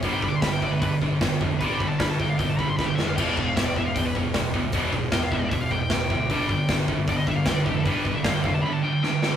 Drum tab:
CC |--------|--------|x-------|--------|
HH |o-o-o-o-|o-o-o---|--o-o-o-|o-o-o-o-|
SD |--o---o-|--o---oo|--o---o-|--o---o-|
BD |oooooooo|ooooooo-|oooooooo|oooooooo|

CC |--------|--------|
HH |o-o-o-o-|o-o-----|
SD |--o---o-|--o---oo|
BD |oooooooo|oooo----|